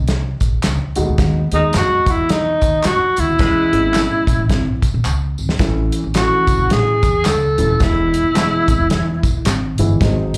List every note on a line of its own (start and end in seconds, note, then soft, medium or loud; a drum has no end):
0.00 0.35 C2 medium
0.08 snare medium
0.08 closed hi-hat medium
0.08 tambourine soft
0.40 0.60 A#1 medium
0.40 kick medium
0.40 closed hi-hat medium
0.40 tambourine medium
0.63 0.78 C#2 medium
0.63 snare medium
0.63 clap medium
0.63 closed hi-hat medium
0.63 tambourine medium
0.96 1.07 D#2 medium
0.96 1.38 G#3 medium
0.96 1.01 A3 medium
0.96 1.39 D#4 medium
0.96 1.38 F#4 medium
0.96 closed hi-hat medium
0.96 tambourine medium
1.03 1.42 B3 medium
1.09 1.18 D2 medium
1.18 1.47 D#2 medium
1.18 kick medium
1.18 snare loud
1.18 closed hi-hat medium
1.18 tambourine soft
1.52 1.71 D#2 medium
1.52 2.21 G#3 medium
1.52 2.21 B3 medium
1.52 2.21 D#4 medium
1.52 1.74 D#4 medium
1.52 2.21 G#4 medium
1.52 closed hi-hat medium
1.52 tambourine soft
1.73 2.03 F#2 medium
1.73 snare medium
1.73 clap medium
1.73 closed hi-hat medium
1.73 tambourine medium
1.77 2.12 F#4 loud
2.06 2.54 E2 medium
2.06 kick medium
2.06 closed hi-hat medium
2.06 tambourine medium
2.10 2.32 E4 medium
2.29 2.87 D#4 loud
2.29 snare medium
2.29 closed hi-hat medium
2.29 tambourine soft
2.61 2.81 D#2 medium
2.61 kick medium
2.61 closed hi-hat medium
2.61 tambourine medium
2.84 2.99 F#2 medium
2.84 3.20 F#4 medium
2.84 snare medium
2.84 clap medium
2.84 closed hi-hat medium
2.84 tambourine medium
3.16 3.27 D2 medium
3.16 4.84 E4 loud
3.16 closed hi-hat medium
3.16 tambourine medium
3.29 3.38 D#2 medium
3.39 3.68 E2 medium
3.39 3.82 G#3 medium
3.39 3.62 G#3 medium
3.39 3.62 B3 medium
3.39 3.62 C#4 medium
3.39 3.82 E4 medium
3.39 3.62 E4 medium
3.39 3.82 B4 medium
3.39 kick medium
3.39 snare loud
3.39 closed hi-hat medium
3.39 tambourine medium
3.73 4.06 G#1 medium
3.73 4.41 G#3 medium
3.73 4.42 B3 medium
3.73 4.42 C#4 medium
3.73 4.42 E4 medium
3.73 closed hi-hat medium
3.94 snare medium
3.94 clap medium
3.94 closed hi-hat medium
3.94 tambourine medium
4.27 4.37 B1 medium
4.27 kick medium
4.27 closed hi-hat medium
4.27 tambourine medium
4.39 4.49 A1 medium
4.50 4.64 G#1 medium
4.50 kick medium
4.50 snare medium
4.50 closed hi-hat medium
4.50 tambourine soft
4.66 4.80 B1 medium
4.82 kick medium
4.82 closed hi-hat medium
4.82 tambourine medium
4.94 5.04 B1 medium
5.05 5.34 C#2 medium
5.05 clap medium
5.05 tambourine medium
5.38 5.48 G#1 medium
5.38 tambourine medium
5.49 snare medium
5.59 5.88 A1 medium
5.59 6.00 E3 medium
5.59 6.00 A3 medium
5.59 6.00 C#4 medium
5.59 6.00 E4 medium
5.59 kick medium
5.59 snare loud
5.59 closed hi-hat medium
5.59 tambourine soft
5.92 closed hi-hat medium
5.92 tambourine soft
6.04 6.28 A1 medium
6.14 6.92 E3 medium
6.14 6.92 A3 medium
6.14 6.92 C#4 medium
6.14 6.91 E4 medium
6.14 6.74 F#4 medium
6.14 snare medium
6.14 clap medium
6.14 closed hi-hat medium
6.14 tambourine medium
6.47 6.57 C#2 medium
6.47 kick medium
6.47 closed hi-hat medium
6.47 tambourine medium
6.59 6.68 A1 medium
6.70 6.99 A2 medium
6.70 7.28 G#4 loud
6.70 snare medium
6.70 closed hi-hat medium
7.03 7.22 E2 medium
7.03 kick medium
7.03 closed hi-hat medium
7.03 tambourine medium
7.25 7.54 C#2 medium
7.25 7.84 A4 loud
7.25 snare medium
7.25 clap medium
7.25 closed hi-hat medium
7.25 tambourine medium
7.58 7.78 D#1 medium
7.58 7.73 E3 medium
7.58 7.73 A3 medium
7.58 7.73 C#4 medium
7.58 7.73 E4 medium
7.58 closed hi-hat medium
7.58 tambourine medium
7.80 8.09 E1 medium
7.80 8.20 E3 medium
7.80 8.21 G#3 medium
7.80 8.20 B3 medium
7.80 8.20 E4 medium
7.80 9.47 E4 medium
7.80 kick loud
7.80 snare loud
7.80 closed hi-hat medium
7.80 tambourine medium
8.14 closed hi-hat medium
8.14 tambourine soft
8.23 8.48 E1 medium
8.34 9.11 E3 medium
8.34 9.11 G#3 medium
8.34 9.11 B3 medium
8.34 9.11 E4 medium
8.34 snare medium
8.34 clap medium
8.34 closed hi-hat medium
8.34 tambourine medium
8.68 8.78 G#1 medium
8.68 kick medium
8.68 closed hi-hat medium
8.68 tambourine medium
8.79 8.89 E1 medium
8.90 9.19 E2 medium
8.90 snare loud
8.90 closed hi-hat medium
8.90 tambourine soft
9.23 9.43 B1 medium
9.23 kick medium
9.23 closed hi-hat medium
9.23 tambourine medium
9.45 9.74 G#1 medium
9.45 snare medium
9.45 clap medium
9.45 closed hi-hat medium
9.45 tambourine medium
9.78 9.98 G1 medium
9.78 9.94 E3 medium
9.78 9.94 G#3 medium
9.78 9.94 B3 medium
9.78 9.94 E4 medium
9.78 closed hi-hat medium
9.78 tambourine medium
10.00 10.29 G#1 loud
10.00 10.38 F#3 medium
10.00 10.38 G#3 medium
10.00 10.38 C4 medium
10.00 10.38 D#4 medium
10.00 kick medium
10.00 snare loud
10.00 closed hi-hat medium
10.00 tambourine soft
10.34 closed hi-hat medium
10.34 tambourine soft